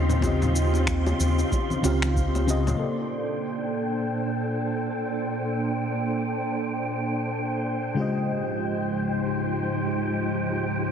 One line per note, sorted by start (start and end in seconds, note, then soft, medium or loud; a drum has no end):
0.00 1.13 D#2 loud
0.00 0.18 C#3 medium
0.00 2.77 C#3 medium
0.00 0.19 C4 medium
0.00 2.77 C4 medium
0.00 2.77 D#4 medium
0.00 0.20 F4 medium
0.00 2.77 F4 medium
0.00 0.21 G4 medium
0.00 2.77 G4 medium
0.00 0.22 D#5 medium
0.00 2.82 C6 medium
0.09 low conga medium
0.09 shaker soft
0.20 1.79 C#3 medium
0.20 1.80 C4 medium
0.20 1.81 F4 medium
0.20 kick loud
0.20 high bongo medium
0.20 shaker soft
0.25 1.82 G4 medium
0.25 1.83 D#5 medium
0.42 low conga medium
0.42 shaker soft
0.56 shaker medium
0.74 high bongo medium
0.74 shaker soft
0.87 finger snap medium
0.87 kick loud
0.87 shaker soft
1.07 high bongo medium
1.07 shaker soft
1.19 1.43 D#2 loud
1.19 high conga medium
1.19 shaker medium
1.39 shaker soft
1.52 kick loud
1.52 high bongo soft
1.52 shaker soft
1.70 high conga medium
1.70 shaker soft
1.82 2.74 C#2 loud
1.82 2.44 C#3 loud
1.82 2.45 C4 medium
1.82 2.45 F4 loud
1.82 2.46 G4 medium
1.82 2.46 F5 loud
1.82 high bongo medium
1.82 shaker medium
2.02 finger snap medium
2.02 high conga medium
2.02 shaker soft
2.16 kick loud
2.16 shaker soft
2.35 high bongo medium
2.35 shaker soft
2.47 2.77 C#3 medium
2.47 2.77 C4 medium
2.47 2.78 F4 medium
2.47 2.78 G4 medium
2.47 2.78 D#5 loud
2.47 shaker medium
2.67 high bongo medium
2.67 low conga medium
2.67 shaker soft
2.77 7.93 A#2 medium
2.77 7.92 A#3 medium
2.77 7.93 D4 medium
2.77 7.93 A4 medium
2.77 10.92 C5 medium
2.81 7.94 C5 medium
2.81 7.95 D5 medium
2.81 10.92 G5 medium
7.94 10.92 C#2 medium
7.94 10.92 G#2 medium
7.94 10.92 C#3 medium
7.94 10.92 F3 medium
7.94 10.92 G#3 medium
7.94 10.92 D#4 medium
7.94 10.92 F4 medium
7.94 10.92 G4 medium
8.00 10.92 C5 medium
8.00 10.92 D#5 medium